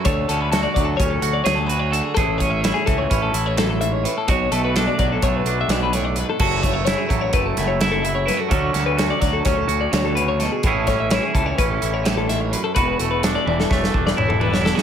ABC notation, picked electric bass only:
X:1
M:9/8
L:1/8
Q:3/8=85
K:A
V:1 name="Picked electric bass" clef=bass
D,, D,,2 D,, D,, D,, D,,3 | A,,,3 C,, A,,, A,,,4 | B,,, B,,,2 B,,, B,,, B,,, B,,,3 | F,,,3 A,,, F,,, F,,,4 |
D,, D,,2 D,, D,, D,, D,,3 | A,,,3 C,, A,,, A,,,4 | E,,, E,,,2 E,,, E,,, E,,, E,,,3 |]